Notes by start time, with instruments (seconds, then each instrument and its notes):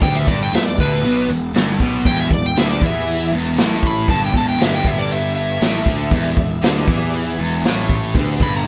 0.02 picked electric bass D2, distorted electric guitar D3, tonewheel organ B3 E4 G4 B4, electric slide guitar G5, kick, open hi-hat
0.16 electric slide guitar E5
0.27 picked electric bass G1, distorted electric guitar G2, electric slide guitar D5, kick
0.43 electric slide guitar G5
0.52 picked electric bass E1, distorted electric guitar E2, tonewheel organ B3 E4 G4 B4, electric slide guitar E5, snare, open hi-hat
0.66 electric slide guitar D5
0.78 picked electric bass D2, distorted electric guitar D3, electric slide guitar B4, kick
1.03 picked electric bass B1, distorted electric guitar B2, open hi-hat
1.28 picked electric bass E1, distorted electric guitar E2
1.54 picked electric bass G1, distorted electric guitar G2, snare, open hi-hat
1.80 picked electric bass B1, distorted electric guitar B2, kick
2.05 picked electric bass E1, distorted electric guitar E2, tonewheel organ B3 E4 G4 B4, electric slide guitar G5, kick, open hi-hat
2.20 electric slide guitar E5
2.31 picked electric bass E1, distorted electric guitar E2, electric slide guitar D5, kick
2.46 electric slide guitar G5
2.56 picked electric bass D2, distorted electric guitar D3, tonewheel organ B3 E4 G4 B4, electric slide guitar E5, snare, open hi-hat
2.71 electric slide guitar D5
2.82 picked electric bass E2, distorted electric guitar E3, kick
2.86 electric slide guitar E5
3.07 open hi-hat
3.32 picked electric bass E1, distorted electric guitar E2
3.57 picked electric bass A1, distorted electric guitar A2, snare, open hi-hat
3.83 kick
3.87 electric slide guitar B5
4.07 picked electric bass G1, distorted electric guitar G2, tonewheel organ B3 E4 G4 B4, electric slide guitar A5, kick, open hi-hat
4.25 electric slide guitar G5
4.34 picked electric bass E1, distorted electric guitar E2, electric slide guitar A5, kick
4.49 electric slide guitar G5
4.59 picked electric bass G1, distorted electric guitar G2, tonewheel organ B3 E4 G4 B4, snare, open hi-hat
4.64 electric slide guitar E5
4.75 electric slide guitar G5
4.85 electric slide guitar E5, kick
4.99 electric slide guitar D5
5.10 electric slide guitar E5, open hi-hat
5.36 electric slide guitar E5
5.60 picked electric bass A1, distorted electric guitar A2, snare, open hi-hat
5.85 picked electric bass D2, distorted electric guitar D3, kick
6.10 picked electric bass E1, distorted electric guitar E2, tonewheel organ B3 E4 G4 D5, kick, open hi-hat
6.36 picked electric bass E1, distorted electric guitar E2, kick
6.61 picked electric bass D2, distorted electric guitar D3, tonewheel organ B3 E4 G4 D5, snare, open hi-hat
6.87 picked electric bass E2, distorted electric guitar E3, kick
7.13 open hi-hat
7.39 picked electric bass E1, distorted electric guitar E2
7.64 picked electric bass A1, distorted electric guitar A2, snare, open hi-hat
7.89 kick
8.14 picked electric bass D2, distorted electric guitar D3, tonewheel organ B3 E4 G4 B4, kick, open hi-hat
8.40 picked electric bass G1, distorted electric guitar G2, electric slide guitar B5, kick
8.57 electric slide guitar A#5
8.63 tonewheel organ B3 E4 G4 A4